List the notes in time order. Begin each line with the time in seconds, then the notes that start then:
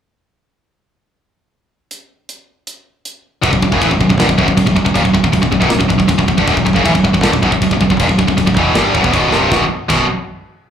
1.91 closed hi-hat
2.29 closed hi-hat
2.67 closed hi-hat
3.05 closed hi-hat
3.42 B0 B1 F#2, kick, crash
3.52 B0 B1 F#2, kick
3.62 B0 B1 F#2, kick
3.72 F#1 F#2 C#3, kick
3.81 A1 A2 E3, kick, crash
3.91 B0 B1 F#2, kick
4.00 B0 B1 F#2, kick
4.09 B0 B1 F#2, kick
4.19 G1 G2 D3, snare, crash
4.29 B0 B1 F#2, kick
4.38 B0 B1 F#2, kick
4.48 B0 B1 F#2, kick
4.57 B0 B1 F#2, kick, crash
4.66 B0 B1 F#2, kick
4.76 B0 B1 F#2, kick
4.85 B0 B1 F#2, kick
4.94 D#1 D#2 A#2, kick, crash
5.04 B0 B1 F#2, kick
5.14 B0 B1 F#2, kick
5.24 B0 B1 F#2, kick
5.32 B0 B1 F#2, kick, crash
5.42 B0 B1 F#2, kick
5.52 B0 B1 F#2, kick
5.60 B0 B1 F#2, kick
5.70 B0 B1 F#2, snare, crash
5.79 B0 B1 F#2, kick
5.89 B0 B1 F#2, kick
5.98 B0 B1 F#2, kick
6.08 B0 B1 F#2, kick, crash
6.18 B0 B1 F#2, kick
6.28 B0 B1 F#2, kick
6.37 G1 G2 D3, kick
6.47 B0 B1 F#2, kick, crash
6.56 B0 B1 F#2, kick
6.65 B0 B1 F#2, kick
6.75 F#1 F#2 C#3, kick
6.84 A1 A2 E3, kick, crash
6.94 B0 B1 F#2, kick
7.04 B0 B1 F#2, kick
7.13 B0 B1 F#2, kick
7.22 G1 G2 D3, snare, crash
7.32 B0 B1 F#2, kick
7.42 B0 B1 F#2, kick
7.52 B0 B1 F#2, kick
7.62 B0 B1 F#2, kick, crash
7.71 B0 B1 F#2, kick
7.81 B0 B1 F#2, kick
7.90 B0 B1 F#2, kick
7.99 D#1 D#2 A#2, kick, crash
8.08 B0 B1 F#2, kick
8.18 B0 B1 F#2, kick
8.28 B0 B1 F#2, kick
8.37 B0 B1 F#2, kick, crash
8.47 B0 B1 F#2, kick
8.57 E1 E2 B2 E3, kick
8.75 G1 G2 D3 G3, snare, crash
8.94 B0 B1 F#2, kick
9.04 E1 E2 B2, kick
9.13 B0 B1 F#2 B2, kick, crash
9.32 C1 C2 G2 C3, snare
9.51 B0 B1 F#2 B2, kick, snare
9.89 B0 B1 F#2 B2, kick, crash